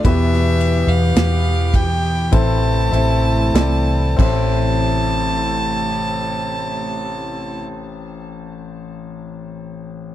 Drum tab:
CC |--------------x-|----------------|
RD |x-x-x-x-x-x-x---|----------------|
SD |-o--o-------o---|----------------|
BD |o-----o-o-----o-|----------------|